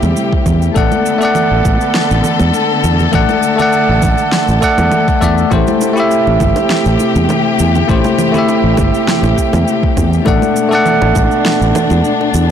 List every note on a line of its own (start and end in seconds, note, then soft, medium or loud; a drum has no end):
0.00 0.13 E2 medium
0.00 0.72 C3 medium
0.00 0.74 G3 medium
0.00 0.74 A3 medium
0.00 0.78 E4 medium
0.00 0.72 G4 medium
0.00 0.78 G4 medium
0.00 0.78 C5 medium
0.00 0.74 E5 medium
0.00 high conga medium
0.00 low conga medium
0.00 shaker soft
0.16 shaker soft
0.33 kick medium
0.46 0.68 E2 medium
0.46 kick medium
0.46 low conga medium
0.46 shaker medium
0.62 shaker soft
0.74 0.87 A1 medium
0.74 5.47 D3 medium
0.74 1.17 A3 medium
0.74 3.11 B3 medium
0.74 1.17 A4 medium
0.74 5.48 A4 medium
0.74 1.18 D5 medium
0.74 1.18 F#5 medium
0.74 kick loud
0.74 shaker soft
0.92 high conga medium
0.92 shaker soft
1.06 shaker medium
1.18 3.09 A3 medium
1.18 3.10 A4 medium
1.18 shaker soft
1.23 3.11 D5 medium
1.23 3.12 F#5 medium
1.35 low conga medium
1.35 shaker soft
1.51 1.61 A1 medium
1.65 1.76 A1 medium
1.65 kick loud
1.65 high conga medium
1.65 shaker medium
1.81 shaker soft
1.94 snare medium
1.94 shaker soft
2.11 2.21 A1 medium
2.11 shaker soft
2.24 low conga medium
2.24 shaker medium
2.40 2.50 E2 medium
2.40 high conga medium
2.40 shaker soft
2.54 shaker soft
2.84 3.06 E2 medium
2.84 shaker medium
2.99 low conga medium
2.99 shaker soft
3.12 3.25 A1 medium
3.12 3.55 A3 medium
3.12 12.51 A3 medium
3.12 3.55 A4 medium
3.12 3.56 D5 medium
3.12 3.56 F#5 medium
3.12 kick loud
3.12 low conga medium
3.12 shaker soft
3.29 high conga medium
3.29 shaker soft
3.43 shaker medium
3.56 4.58 A3 medium
3.56 4.59 A4 medium
3.56 4.60 D5 medium
3.56 low conga medium
3.56 shaker soft
3.62 4.61 F#5 medium
3.73 shaker soft
3.89 3.99 A1 medium
4.02 4.14 A1 medium
4.02 kick loud
4.02 high conga medium
4.02 low conga medium
4.02 shaker medium
4.18 shaker soft
4.32 snare medium
4.32 shaker soft
4.48 4.58 A1 medium
4.48 shaker soft
4.61 5.18 A3 medium
4.61 5.18 A4 medium
4.61 5.19 D5 medium
4.61 5.19 F#5 medium
4.61 kick medium
4.61 shaker medium
4.78 4.88 E2 medium
4.78 high conga medium
4.78 low conga medium
4.78 shaker soft
4.92 low conga medium
4.92 shaker soft
5.08 kick loud
5.08 shaker soft
5.20 5.43 E2 medium
5.20 5.47 A3 medium
5.20 5.48 A4 medium
5.20 5.48 D5 medium
5.20 5.49 E5 medium
5.20 kick medium
5.20 shaker medium
5.38 shaker soft
5.50 5.63 A1 medium
5.50 10.22 C3 medium
5.50 5.92 A3 medium
5.50 5.93 E4 medium
5.50 10.22 G4 medium
5.50 5.93 G4 medium
5.50 5.94 C5 medium
5.50 kick loud
5.50 high bongo medium
5.50 low conga medium
5.50 shaker soft
5.67 high conga medium
5.67 shaker soft
5.81 high bongo medium
5.81 shaker medium
5.93 7.84 A3 medium
5.93 7.85 E4 medium
5.93 7.86 G4 medium
5.93 shaker soft
6.00 7.87 E5 medium
6.11 shaker soft
6.27 6.37 A1 medium
6.27 high bongo soft
6.40 6.52 G1 medium
6.40 kick loud
6.40 high conga medium
6.40 low conga medium
6.40 shaker medium
6.56 high bongo medium
6.56 shaker soft
6.70 snare medium
6.70 shaker soft
6.85 6.96 A1 medium
6.85 shaker soft
7.00 high bongo soft
7.00 shaker medium
7.16 7.26 E2 medium
7.16 high conga medium
7.16 shaker soft
7.29 high bongo medium
7.29 low conga medium
7.29 shaker soft
7.59 7.81 E2 medium
7.59 shaker medium
7.75 high bongo soft
7.75 low conga medium
7.75 shaker soft
7.88 8.00 A1 medium
7.88 8.30 A3 medium
7.88 8.30 E4 medium
7.88 8.31 G4 medium
7.88 8.31 C5 medium
7.88 kick loud
7.88 shaker soft
8.04 high bongo medium
8.04 high conga medium
8.04 shaker soft
8.19 low conga medium
8.19 shaker medium
8.32 10.22 A3 medium
8.32 10.23 E4 medium
8.32 low conga medium
8.32 shaker soft
8.36 10.24 G4 medium
8.36 10.25 E5 medium
8.48 high bongo medium
8.48 shaker soft
8.64 8.74 A1 medium
8.77 8.90 G1 medium
8.77 kick medium
8.77 high bongo medium
8.77 high conga medium
8.77 shaker medium
8.94 shaker soft
9.08 snare medium
9.08 low conga medium
9.08 shaker soft
9.23 9.33 A1 medium
9.23 high bongo medium
9.23 shaker soft
9.38 kick medium
9.38 shaker medium
9.53 9.63 E2 medium
9.53 high bongo medium
9.53 high conga medium
9.53 low conga medium
9.53 shaker soft
9.68 shaker soft
9.83 kick medium
9.97 10.19 E2 medium
9.97 kick medium
9.97 high bongo soft
9.97 low conga medium
9.97 shaker medium
10.13 shaker soft
10.25 10.38 A1 medium
10.25 12.51 B2 medium
10.25 10.67 A3 medium
10.25 12.51 D4 medium
10.25 10.68 A4 medium
10.25 10.69 D5 medium
10.25 10.69 F#5 medium
10.25 kick loud
10.25 high bongo medium
10.25 shaker soft
10.42 high conga medium
10.42 shaker soft
10.56 shaker medium
10.69 12.51 A3 medium
10.69 12.51 A4 medium
10.69 high bongo medium
10.69 shaker soft
10.73 12.51 D5 medium
10.73 12.51 F#5 medium
10.86 low conga medium
10.86 shaker soft
11.02 11.12 A1 medium
11.02 high bongo medium
11.15 11.27 A1 medium
11.15 kick medium
11.15 high conga medium
11.15 shaker medium
11.31 shaker soft
11.45 snare medium
11.45 high bongo medium
11.45 shaker soft
11.61 11.71 A1 medium
11.61 shaker soft
11.75 high bongo medium
11.75 low conga medium
11.75 shaker medium
11.90 12.01 E2 medium
11.90 high conga medium
11.90 shaker soft
12.04 shaker soft
12.21 high bongo soft
12.34 12.51 E2 medium
12.34 shaker medium